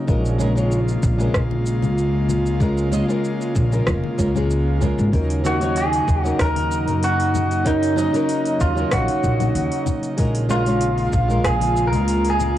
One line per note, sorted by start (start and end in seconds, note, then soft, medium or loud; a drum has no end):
0.00 10.14 C#3 medium
0.00 10.15 A#3 medium
0.07 0.95 A#1 medium
0.07 0.36 G#3 medium
0.07 5.09 G#3 medium
0.07 0.36 C#4 medium
0.07 5.09 F4 medium
0.07 0.36 F4 medium
0.07 0.37 A#4 medium
0.07 kick loud
0.07 shaker soft
0.25 shaker soft
0.38 0.52 G#3 medium
0.38 0.52 C#4 medium
0.38 0.53 F4 medium
0.38 0.53 A#4 loud
0.38 high conga medium
0.38 shaker medium
0.55 0.78 G#3 medium
0.55 0.78 C#4 medium
0.55 0.79 F4 medium
0.55 0.79 C#5 medium
0.55 shaker soft
0.72 shaker soft
0.88 shaker soft
1.03 1.25 A#1 medium
1.03 kick loud
1.03 shaker medium
1.18 1.41 G#3 medium
1.18 1.42 C#4 medium
1.18 1.42 F4 medium
1.18 1.42 A#4 medium
1.18 shaker soft
1.34 1.83 A#1 medium
1.34 kick loud
1.34 cross-stick medium
1.34 shaker soft
1.51 high conga medium
1.66 shaker medium
1.82 3.01 C#2 medium
1.82 low conga medium
1.82 shaker soft
1.98 shaker soft
2.29 high conga medium
2.29 low conga medium
2.29 shaker medium
2.46 shaker soft
2.60 2.88 G#3 medium
2.60 2.89 C#4 medium
2.60 2.89 F4 medium
2.60 2.90 A#4 medium
2.60 kick loud
2.60 shaker soft
2.78 shaker soft
2.92 3.05 G#3 medium
2.92 3.05 C#4 medium
2.92 3.05 F4 medium
2.92 3.06 D#5 medium
2.92 high conga medium
2.92 shaker medium
3.08 3.68 G#3 medium
3.08 3.68 C#4 medium
3.08 3.69 F4 medium
3.08 3.69 A#4 medium
3.08 shaker soft
3.25 shaker soft
3.41 shaker soft
3.56 3.78 A#1 medium
3.56 kick loud
3.56 shaker medium
3.71 4.15 G#3 medium
3.71 4.16 C#4 medium
3.71 4.16 F4 medium
3.71 4.16 A#4 medium
3.71 shaker soft
3.87 3.99 F1 medium
3.87 kick loud
3.87 cross-stick medium
3.87 shaker soft
4.04 high conga medium
4.18 4.90 C#2 medium
4.18 4.31 G#3 medium
4.18 4.31 C#4 medium
4.18 4.32 F4 medium
4.18 4.32 A#4 medium
4.18 kick medium
4.18 shaker medium
4.35 4.78 G#3 medium
4.35 4.78 C#4 medium
4.35 4.79 F4 medium
4.35 4.79 G#4 medium
4.35 low conga medium
4.35 shaker soft
4.51 shaker soft
4.81 5.09 G#3 medium
4.81 5.10 C#4 medium
4.81 5.10 F4 medium
4.81 5.11 A#4 medium
4.81 kick medium
4.81 high conga medium
4.81 low conga medium
4.81 shaker medium
4.98 5.09 G#1 medium
4.98 shaker soft
5.12 6.01 D#2 medium
5.12 5.41 F#3 medium
5.12 10.15 F#3 medium
5.12 5.41 C#4 medium
5.12 5.42 D#4 medium
5.12 10.15 D#4 medium
5.12 5.42 A#4 medium
5.12 kick loud
5.12 open hi-hat medium
5.12 shaker soft
5.30 open hi-hat soft
5.30 shaker soft
5.44 5.57 F#3 medium
5.44 5.57 C#4 medium
5.44 5.58 D#4 medium
5.44 5.77 F#4 medium
5.44 5.58 A#4 loud
5.44 high conga medium
5.44 shaker medium
5.61 5.83 F#3 medium
5.61 5.84 C#4 medium
5.61 5.84 D#4 medium
5.61 5.84 C#5 medium
5.61 open hi-hat soft
5.61 shaker soft
5.76 6.23 G#4 medium
5.76 open hi-hat medium
5.76 shaker soft
5.93 open hi-hat soft
5.93 shaker soft
6.08 6.30 D#2 medium
6.08 kick loud
6.08 shaker medium
6.23 6.46 F#3 medium
6.23 6.47 C#4 medium
6.23 6.47 D#4 medium
6.23 6.36 F#4 medium
6.23 6.48 A#4 medium
6.23 shaker soft
6.39 6.88 D#2 medium
6.39 7.04 A#4 loud
6.39 kick loud
6.39 cross-stick medium
6.39 open hi-hat medium
6.39 shaker soft
6.56 open hi-hat soft
6.56 high conga medium
6.72 shaker medium
6.87 8.06 F#2 medium
6.87 open hi-hat soft
6.87 low conga medium
6.87 shaker soft
7.03 7.68 F#4 medium
7.03 open hi-hat medium
7.03 shaker soft
7.20 open hi-hat soft
7.34 high conga medium
7.34 low conga medium
7.34 shaker medium
7.51 open hi-hat soft
7.51 shaker soft
7.65 7.93 F#3 medium
7.65 7.94 C#4 medium
7.65 7.94 D#4 medium
7.65 7.97 D#4 loud
7.65 7.94 A#4 medium
7.65 kick loud
7.65 open hi-hat medium
7.65 shaker soft
7.83 open hi-hat soft
7.83 shaker soft
7.96 8.10 F#3 medium
7.96 8.10 C#4 medium
7.96 8.10 D#4 medium
7.96 8.63 D#4 medium
7.96 8.11 D#5 medium
7.96 high conga medium
7.96 shaker medium
8.13 8.73 F#3 medium
8.13 8.73 C#4 medium
8.13 8.74 D#4 medium
8.13 8.74 A#4 medium
8.13 open hi-hat soft
8.13 shaker soft
8.29 open hi-hat medium
8.29 shaker soft
8.45 open hi-hat soft
8.45 shaker soft
8.61 8.83 D#2 loud
8.61 8.92 F4 medium
8.61 kick loud
8.61 shaker medium
8.75 10.14 F#3 medium
8.75 10.15 C#4 medium
8.75 10.15 D#4 medium
8.75 shaker soft
8.80 10.16 A#4 medium
8.92 9.04 A#1 medium
8.92 9.83 F#4 medium
8.92 kick loud
8.92 cross-stick medium
8.92 open hi-hat medium
8.92 shaker soft
9.08 open hi-hat soft
9.08 high conga medium
9.24 9.46 A#1 medium
9.24 kick medium
9.24 shaker medium
9.40 open hi-hat soft
9.40 low conga medium
9.40 shaker soft
9.55 9.67 D#2 medium
9.55 open hi-hat medium
9.55 shaker soft
9.71 open hi-hat soft
9.86 kick medium
9.86 high conga medium
9.86 low conga medium
9.86 shaker medium
10.03 open hi-hat soft
10.03 shaker soft
10.17 11.06 A#1 medium
10.17 12.58 C#3 medium
10.17 10.46 G#3 medium
10.17 12.58 G#3 medium
10.17 12.58 A#3 medium
10.17 10.46 C#4 medium
10.17 10.46 F4 medium
10.17 12.58 F4 medium
10.17 10.47 A#4 medium
10.17 kick loud
10.17 open hi-hat medium
10.17 shaker soft
10.35 open hi-hat soft
10.35 shaker soft
10.49 10.62 G#3 medium
10.49 10.62 C#4 medium
10.49 10.63 F4 medium
10.49 11.41 F4 medium
10.49 10.63 A#4 loud
10.49 high conga medium
10.49 shaker medium
10.65 10.88 G#3 medium
10.65 10.89 C#4 medium
10.65 10.89 F4 medium
10.65 10.90 C#5 medium
10.65 open hi-hat soft
10.65 shaker soft
10.81 open hi-hat medium
10.81 shaker soft
10.98 open hi-hat soft
10.98 shaker soft
11.13 11.36 A#1 medium
11.13 kick loud
11.13 shaker medium
11.28 11.51 G#3 medium
11.28 11.52 C#4 medium
11.28 11.52 F4 medium
11.28 11.53 A#4 medium
11.28 shaker soft
11.45 11.93 A#1 medium
11.45 11.87 G#4 loud
11.45 kick loud
11.45 cross-stick medium
11.45 open hi-hat medium
11.45 shaker soft
11.61 open hi-hat soft
11.61 high conga medium
11.77 shaker medium
11.88 12.29 A#4 loud
11.93 12.58 C#2 medium
11.93 open hi-hat soft
11.93 low conga medium
11.93 shaker soft
12.08 open hi-hat medium
12.08 shaker soft
12.25 open hi-hat soft
12.30 12.58 G#4 loud
12.40 high conga medium
12.40 low conga medium
12.40 shaker medium